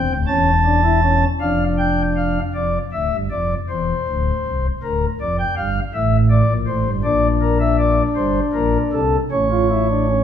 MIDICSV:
0, 0, Header, 1, 2, 480
1, 0, Start_track
1, 0, Tempo, 757576
1, 175, Time_signature, 6, 3, 24, 8
1, 3059, Tempo, 745342
1, 5459, Tempo, 770218
1, 6508, End_track
2, 0, Start_track
2, 0, Title_t, "Pipe organ"
2, 0, Program_c, 0, 19
2, 0, Note_on_c, 0, 60, 84
2, 0, Note_on_c, 0, 79, 83
2, 53, Note_on_c, 0, 26, 72
2, 55, Note_on_c, 0, 38, 74
2, 78, Note_off_c, 0, 79, 0
2, 88, Note_off_c, 0, 60, 0
2, 156, Note_off_c, 0, 26, 0
2, 157, Note_off_c, 0, 38, 0
2, 168, Note_on_c, 0, 28, 77
2, 170, Note_on_c, 0, 40, 74
2, 170, Note_on_c, 0, 61, 95
2, 171, Note_on_c, 0, 81, 80
2, 318, Note_off_c, 0, 61, 0
2, 410, Note_on_c, 0, 62, 81
2, 513, Note_off_c, 0, 62, 0
2, 530, Note_on_c, 0, 64, 80
2, 633, Note_off_c, 0, 64, 0
2, 649, Note_on_c, 0, 61, 86
2, 786, Note_off_c, 0, 28, 0
2, 786, Note_off_c, 0, 40, 0
2, 787, Note_off_c, 0, 81, 0
2, 798, Note_off_c, 0, 61, 0
2, 887, Note_on_c, 0, 62, 87
2, 888, Note_on_c, 0, 77, 69
2, 889, Note_on_c, 0, 29, 69
2, 889, Note_on_c, 0, 41, 70
2, 1038, Note_off_c, 0, 77, 0
2, 1130, Note_on_c, 0, 79, 75
2, 1280, Note_off_c, 0, 79, 0
2, 1371, Note_on_c, 0, 77, 66
2, 1511, Note_off_c, 0, 62, 0
2, 1512, Note_off_c, 0, 29, 0
2, 1512, Note_off_c, 0, 41, 0
2, 1521, Note_off_c, 0, 77, 0
2, 1611, Note_on_c, 0, 29, 71
2, 1611, Note_on_c, 0, 41, 65
2, 1612, Note_on_c, 0, 74, 61
2, 1762, Note_off_c, 0, 29, 0
2, 1762, Note_off_c, 0, 41, 0
2, 1762, Note_off_c, 0, 74, 0
2, 1852, Note_on_c, 0, 38, 66
2, 1854, Note_on_c, 0, 26, 68
2, 1855, Note_on_c, 0, 76, 63
2, 1958, Note_off_c, 0, 38, 0
2, 1959, Note_off_c, 0, 26, 0
2, 1978, Note_on_c, 0, 31, 68
2, 1978, Note_on_c, 0, 43, 64
2, 2006, Note_off_c, 0, 76, 0
2, 2082, Note_off_c, 0, 31, 0
2, 2082, Note_off_c, 0, 43, 0
2, 2096, Note_on_c, 0, 29, 67
2, 2096, Note_on_c, 0, 41, 66
2, 2096, Note_on_c, 0, 74, 64
2, 2246, Note_off_c, 0, 29, 0
2, 2246, Note_off_c, 0, 41, 0
2, 2246, Note_off_c, 0, 74, 0
2, 2338, Note_on_c, 0, 40, 70
2, 2339, Note_on_c, 0, 28, 75
2, 2339, Note_on_c, 0, 72, 61
2, 2487, Note_off_c, 0, 40, 0
2, 2488, Note_off_c, 0, 28, 0
2, 2582, Note_on_c, 0, 26, 75
2, 2583, Note_on_c, 0, 38, 73
2, 2729, Note_off_c, 0, 26, 0
2, 2730, Note_off_c, 0, 38, 0
2, 2824, Note_on_c, 0, 36, 66
2, 2825, Note_on_c, 0, 24, 65
2, 2956, Note_off_c, 0, 72, 0
2, 2970, Note_off_c, 0, 36, 0
2, 2971, Note_off_c, 0, 24, 0
2, 3059, Note_on_c, 0, 38, 66
2, 3059, Note_on_c, 0, 70, 75
2, 3060, Note_on_c, 0, 26, 66
2, 3208, Note_off_c, 0, 38, 0
2, 3208, Note_off_c, 0, 70, 0
2, 3209, Note_off_c, 0, 26, 0
2, 3301, Note_on_c, 0, 41, 66
2, 3302, Note_on_c, 0, 29, 66
2, 3303, Note_on_c, 0, 74, 77
2, 3404, Note_off_c, 0, 74, 0
2, 3420, Note_on_c, 0, 79, 72
2, 3449, Note_off_c, 0, 29, 0
2, 3449, Note_off_c, 0, 41, 0
2, 3523, Note_off_c, 0, 79, 0
2, 3533, Note_on_c, 0, 77, 79
2, 3534, Note_on_c, 0, 31, 70
2, 3535, Note_on_c, 0, 43, 71
2, 3683, Note_off_c, 0, 31, 0
2, 3683, Note_off_c, 0, 77, 0
2, 3684, Note_off_c, 0, 43, 0
2, 3775, Note_on_c, 0, 45, 67
2, 3775, Note_on_c, 0, 76, 78
2, 3776, Note_on_c, 0, 33, 74
2, 3923, Note_off_c, 0, 76, 0
2, 4007, Note_on_c, 0, 74, 93
2, 4082, Note_off_c, 0, 45, 0
2, 4083, Note_off_c, 0, 33, 0
2, 4129, Note_on_c, 0, 34, 71
2, 4129, Note_on_c, 0, 46, 71
2, 4157, Note_off_c, 0, 74, 0
2, 4233, Note_off_c, 0, 34, 0
2, 4233, Note_off_c, 0, 46, 0
2, 4244, Note_on_c, 0, 45, 74
2, 4244, Note_on_c, 0, 72, 80
2, 4247, Note_on_c, 0, 33, 71
2, 4350, Note_off_c, 0, 45, 0
2, 4352, Note_off_c, 0, 33, 0
2, 4363, Note_on_c, 0, 31, 71
2, 4363, Note_on_c, 0, 43, 71
2, 4395, Note_off_c, 0, 72, 0
2, 4469, Note_off_c, 0, 31, 0
2, 4469, Note_off_c, 0, 43, 0
2, 4482, Note_on_c, 0, 34, 82
2, 4483, Note_on_c, 0, 46, 75
2, 4484, Note_on_c, 0, 74, 87
2, 4485, Note_on_c, 0, 62, 79
2, 4635, Note_off_c, 0, 74, 0
2, 4725, Note_on_c, 0, 70, 86
2, 4831, Note_off_c, 0, 70, 0
2, 4845, Note_on_c, 0, 76, 84
2, 4952, Note_off_c, 0, 76, 0
2, 4966, Note_on_c, 0, 74, 89
2, 5109, Note_off_c, 0, 34, 0
2, 5110, Note_off_c, 0, 46, 0
2, 5118, Note_off_c, 0, 74, 0
2, 5203, Note_on_c, 0, 43, 76
2, 5205, Note_on_c, 0, 31, 77
2, 5205, Note_on_c, 0, 72, 89
2, 5358, Note_off_c, 0, 43, 0
2, 5358, Note_off_c, 0, 72, 0
2, 5359, Note_off_c, 0, 31, 0
2, 5444, Note_on_c, 0, 34, 79
2, 5446, Note_on_c, 0, 46, 78
2, 5446, Note_on_c, 0, 70, 95
2, 5596, Note_off_c, 0, 34, 0
2, 5597, Note_off_c, 0, 46, 0
2, 5597, Note_off_c, 0, 70, 0
2, 5690, Note_on_c, 0, 48, 69
2, 5691, Note_on_c, 0, 36, 75
2, 5691, Note_on_c, 0, 69, 79
2, 5734, Note_off_c, 0, 62, 0
2, 5841, Note_off_c, 0, 36, 0
2, 5841, Note_off_c, 0, 48, 0
2, 5842, Note_off_c, 0, 69, 0
2, 5930, Note_on_c, 0, 33, 76
2, 5930, Note_on_c, 0, 45, 72
2, 5930, Note_on_c, 0, 61, 73
2, 5931, Note_on_c, 0, 73, 72
2, 6036, Note_off_c, 0, 61, 0
2, 6053, Note_on_c, 0, 65, 65
2, 6158, Note_off_c, 0, 65, 0
2, 6174, Note_on_c, 0, 64, 65
2, 6279, Note_off_c, 0, 64, 0
2, 6294, Note_on_c, 0, 62, 64
2, 6399, Note_off_c, 0, 62, 0
2, 6416, Note_on_c, 0, 61, 70
2, 6508, Note_off_c, 0, 33, 0
2, 6508, Note_off_c, 0, 45, 0
2, 6508, Note_off_c, 0, 61, 0
2, 6508, Note_off_c, 0, 73, 0
2, 6508, End_track
0, 0, End_of_file